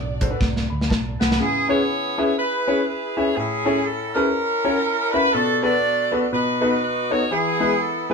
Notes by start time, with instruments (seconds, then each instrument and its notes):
Already playing: fingered electric bass B1, grand piano D3, string section D4 F#4 A4 D5
0.21 grand piano D4 F#4 A4 C5, kick, closed hi-hat
0.30 grand piano D4 F#4 A4 B4
0.41 fingered electric bass C2, kick, snare
0.56 snare
0.70 fingered electric bass D2, grand piano B5
0.81 snare
0.90 fingered electric bass B1, grand piano A5, kick, snare
1.20 fingered electric bass C2, saxophone section B4, grand piano F#5, snare
1.31 snare
1.40 grand piano C#3, saxophone section B3 E4 G#4
1.69 grand piano C#4 E4 G#4 B4 C#5, saxophone section E4 G#4 C#5
2.18 grand piano C#4 E4 G#4 B4 E5
2.39 saxophone section E4 G#4 B4
2.68 grand piano C#4 E4 G#4 B4 C#5
2.87 saxophone section B4
3.17 grand piano C#4 E4 G#4 B4 E5, saxophone section C#5
3.37 grand piano A2, saxophone section C#4 E4 G#4
3.65 grand piano C#4 E4 G#4 A4 C#5
3.84 saxophone section A4
4.15 grand piano C#4 E4 G#4 A4 B4, saxophone section C#4 E4 A#4
4.65 grand piano C#4 E4 F#4 A#4 C#5
5.12 grand piano C#4 E4 F#4 A#4 E5, saxophone section B4
5.33 grand piano B2, saxophone section D4 F#4 A4
5.62 grand piano B3 D4 F#4 A4 B4, saxophone section F#4 A4 D5
6.11 grand piano B3 D4 F#4 A4 B4
6.32 grand piano B2, saxophone section D#4 F#4 B4
6.61 grand piano B3 D#4 F#4 A4 B4
6.83 saxophone section B4
7.10 grand piano B3 D#4 F#4 A4 C#5, saxophone section C#5
7.31 grand piano E3, saxophone section B3 E4 G#4
7.60 grand piano G#3 B3 E4 G#4 B4
7.81 saxophone section A4
8.10 grand piano G#3 B3 E4 G#4 B4, saxophone section E4 G#4 B4